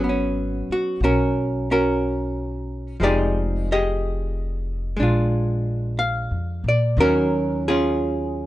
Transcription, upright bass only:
0.00 0.64 G#1 medium
0.69 muted upright bass stroke soft
1.00 2.95 B1 medium
3.00 4.94 F1 medium
4.98 6.26 A#1 medium
6.31 6.61 F2 soft
6.64 6.94 A#2 medium
6.97 8.46 D#2 medium

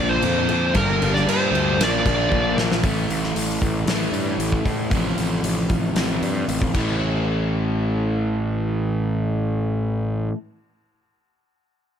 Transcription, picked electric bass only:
0.00 0.20 A#1 medium
0.23 0.47 F2 medium
0.50 0.73 F2 medium
0.74 0.98 G1 medium
1.01 1.24 G1 medium
1.27 1.50 G2 loud
1.51 1.75 D2 medium
1.78 2.02 A#1 medium
2.05 2.28 A#1 medium
2.31 2.54 A#1 medium
2.56 2.80 A#1 medium
2.83 3.04 A1 medium
3.09 3.30 A1 medium
3.36 3.57 A1 medium
3.62 3.83 A1 medium
3.86 4.08 A1 medium
4.12 4.34 G2 medium
4.38 4.60 A1 medium
4.65 4.87 A2 medium
4.90 5.12 A1 medium
5.17 5.39 A1 medium
5.43 5.65 A1 medium
5.69 5.91 A1 medium
5.95 6.17 A1 medium
6.22 6.43 G2 medium
6.48 6.70 A1 medium
6.74 10.29 A1 medium

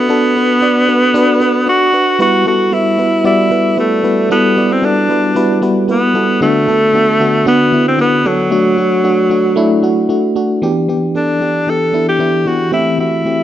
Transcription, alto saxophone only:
0.00 1.68 B3 loud
1.69 2.17 F#4 loud
2.21 2.45 F#4 loud
2.48 2.75 F#4 loud
2.73 3.25 E4 loud
3.26 3.75 E4 loud
3.79 4.28 A3 loud
4.31 4.73 B3 loud
4.72 4.87 C4 medium
4.85 5.63 D4 medium
5.90 6.38 B3 loud
6.42 7.43 A3 loud
7.48 7.84 B3 loud
7.88 7.99 C4 medium
8.01 8.29 B3 loud
8.27 10.10 F#3 loud
11.16 11.71 D4 medium
11.69 12.08 A4 loud
12.08 12.49 G4 medium
12.47 12.73 F#4 medium
12.73 12.97 E4 loud
13.00 13.43 E4 medium

